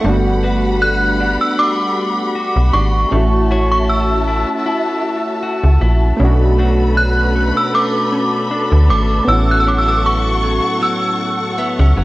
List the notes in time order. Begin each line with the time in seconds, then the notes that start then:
Already playing: E4 F#4 A4 C#5 F#5
0.01 G1 G3 A3 A#3 B5
0.06 B3 D4 F#4
0.43 D4 F#4 B4
0.81 A4 F#6
1.20 D4
1.41 E6
1.59 D4 D6
2.35 F#4
2.56 B1
2.73 G#1 D4 C#6
3.09 A1 G3 A3 C#4 F#4 E5 A5
3.14 A3 E4 F#4
3.51 E4 F#4 C#5
3.71 C#6
3.89 E6
4.28 E4
4.66 E4
5.43 F#4
5.64 C#2
5.81 A#1 E4
6.17 B1 B2 A3 C#4 A4 B4 B5
6.22 D4 F#4
6.58 A3 D4 F#4
6.97 F#6
7.36 A3
7.57 E6
7.74 A3 D6
8.12 C#4
8.51 D4
8.72 D2
8.89 G#1 A3 D6
9.25 A1 A2 B3 C#4 F#5 C#6 E6
9.30 E4 F#4
9.51 F#6
9.60 E6
9.66 F#3 C#4 E4 D6
9.78 E6
9.88 E6
10.06 C#6
10.43 F#3
10.81 F#3 E6
11.58 B3 E5
11.79 C#2 C#4
11.97 F#1 F#3